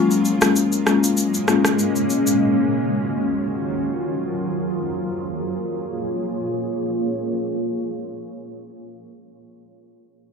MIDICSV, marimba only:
0, 0, Header, 1, 2, 480
1, 0, Start_track
1, 0, Key_signature, -5, "minor"
1, 0, Tempo, 618557
1, 1870, Time_signature, 4, 2, 24, 8
1, 8015, End_track
2, 0, Start_track
2, 0, Title_t, "Marimba"
2, 0, Program_c, 0, 12
2, 0, Note_on_c, 0, 56, 90
2, 0, Note_on_c, 0, 58, 80
2, 0, Note_on_c, 0, 61, 88
2, 0, Note_on_c, 0, 65, 101
2, 289, Note_off_c, 0, 56, 0
2, 290, Note_off_c, 0, 58, 0
2, 291, Note_off_c, 0, 61, 0
2, 291, Note_off_c, 0, 65, 0
2, 319, Note_on_c, 0, 56, 72
2, 321, Note_on_c, 0, 58, 66
2, 323, Note_on_c, 0, 61, 68
2, 324, Note_on_c, 0, 65, 80
2, 643, Note_off_c, 0, 56, 0
2, 643, Note_off_c, 0, 58, 0
2, 644, Note_off_c, 0, 61, 0
2, 645, Note_off_c, 0, 65, 0
2, 667, Note_on_c, 0, 56, 73
2, 669, Note_on_c, 0, 58, 67
2, 670, Note_on_c, 0, 61, 70
2, 672, Note_on_c, 0, 65, 80
2, 891, Note_off_c, 0, 56, 0
2, 892, Note_off_c, 0, 58, 0
2, 893, Note_off_c, 0, 61, 0
2, 894, Note_off_c, 0, 65, 0
2, 1148, Note_on_c, 0, 56, 72
2, 1150, Note_on_c, 0, 58, 68
2, 1151, Note_on_c, 0, 61, 69
2, 1153, Note_on_c, 0, 65, 82
2, 1274, Note_off_c, 0, 56, 0
2, 1275, Note_off_c, 0, 58, 0
2, 1276, Note_off_c, 0, 61, 0
2, 1277, Note_off_c, 0, 65, 0
2, 8015, End_track
0, 0, End_of_file